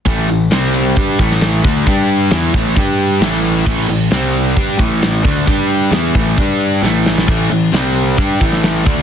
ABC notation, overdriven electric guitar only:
X:1
M:4/4
L:1/8
Q:1/4=133
K:Am
V:1 name="Overdriven electric guitar" clef=bass
[A,,E,A,] [A,,E,] [C,G,C]2 [G,DG] [A,,E,A,]2 [D,A,D] | [G,DG]2 [E,B,E] [A,,E,A,] [G,DG]2 [A,,E,A,]2 | [A,,E,A,] [A,,E,] [C,G,C]2 [G,DG] [A,,E,A,]2 [D,A,D] | [G,DG]2 [E,B,E] [A,,E,A,] [G,DG]2 [A,,E,A,]2 |
[A,,E,A,] [A,,E,] [C,G,C]2 [G,DG] [A,,E,A,]2 [D,A,D] |]